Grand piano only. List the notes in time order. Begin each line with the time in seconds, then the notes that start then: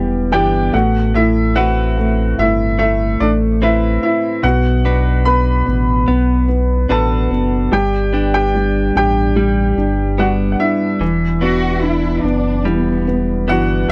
Already playing: G4 G5
0.32 G4 G5
0.74 F#4 F#5
1.15 E4 E5
1.56 F#4 F#5
2.39 E4 E5
2.79 E4 E5
3.20 D4 D5
3.63 E4 E5
4.03 E4 E5
4.44 F#4 F#5
5.25 B4 B5
6.91 A4 A5
7.73 G4 G5
8.34 G4 G5
8.97 G4 G5
10.20 F#4 F#5
10.52 F#5
10.60 E4 E5
13.49 F#4 F#5